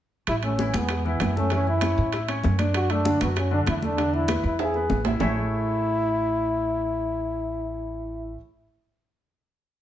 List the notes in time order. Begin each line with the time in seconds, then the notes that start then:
0.27 A1 E4, high bongo, high conga, high timbale
0.43 A3 C#4 A4, high bongo, high conga, high timbale
0.59 E3 E4, high bongo, high conga
0.74 E2 G#3 B3 G#4, high bongo, high conga, high timbale
0.89 high bongo, high conga, high timbale
1.05 E3 B3 E4, high conga
1.20 F#2, high bongo, low bongo, high conga, high timbale, low timbale
1.36 A3 C#4 A4, high bongo, high conga
1.50 E3 C#4 E4, high bongo, high conga, high timbale
1.67 E4, high bongo, high conga
1.81 C#4 C#5, high bongo, high conga, high timbale
1.98 A2, high bongo, high conga
2.12 E4 E5, high bongo, high conga, high timbale
2.28 C#4 C#5, high conga, high timbale
2.44 F#2, high bongo, low bongo, high conga
2.59 D4 D5, high bongo, high conga, high timbale
2.74 F#4, high bongo, high conga, high timbale
2.89 A3 D4 A4, high bongo, high conga, high timbale
3.05 D3 D4, high bongo, high conga
3.21 F#2 F#3 B3 F#4, high bongo, high conga, high timbale
3.36 C#4, high bongo, high conga, high timbale
3.51 D3 D4, high conga
3.66 E2 E4, high bongo, low bongo, high conga, high timbale
3.82 A3 D4 A4, high bongo, high conga
3.97 D3 D4, high bongo, high conga, high timbale
4.14 E4, high bongo, high conga
4.28 B3 B4, high bongo, high conga, high timbale
4.43 E2 E4, high bongo, high conga
4.59 E4 G#4 E5, high bongo, high conga, high timbale
4.74 B3 B4, high conga
4.90 A1, high bongo, low bongo, high conga
5.05 E4 E5, high bongo, high conga, low timbale
5.20 A1 A3 E4 G#4 A4 C#5 E5, low bongo, low conga, low timbale